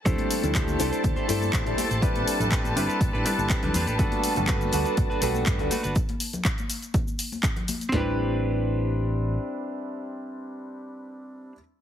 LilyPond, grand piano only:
\new Staff \with { instrumentName = "Grand piano" } { \time 4/4 \key a \dorian \tempo 4 = 122 <g c' d' e' a'>8. <g c' d' e' a'>8. <g c' d' e' a'>4 <g c' d' e' a'>8. <g c' d' e' a'>16 r8 | <g c' d' e' b'>8. <g c' d' e' b'>8. <g c' d' e' b'>4 <g c' d' e' b'>8. <g c' d' e' b'>16 r8 | <g b d' fis' a'>8. <g b d' fis' a'>8. <g b d' fis' a'>4 <g b d' fis' a'>8. <g b d' fis' a'>16 r8 | r1 |
<g c' d' e' b'>1~ | <g c' d' e' b'>1 | }